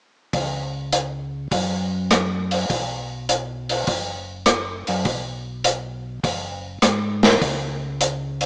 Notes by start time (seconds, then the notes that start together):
0.33 C#2, kick, open hi-hat
0.93 closed hi-hat
1.51 F#2, kick, open hi-hat
2.11 cross-stick, closed hi-hat
2.51 open hi-hat
2.70 B1, kick, open hi-hat
3.29 closed hi-hat
3.69 open hi-hat
3.87 F#1, kick, open hi-hat
4.46 cross-stick, closed hi-hat
4.87 F#2, open hi-hat
5.05 B1, kick, open hi-hat
5.64 closed hi-hat
6.23 F#1, kick, open hi-hat
6.82 G#2, cross-stick, closed hi-hat
7.23 snare, open hi-hat
7.41 C#2, kick, open hi-hat
8.01 closed hi-hat
8.41 open hi-hat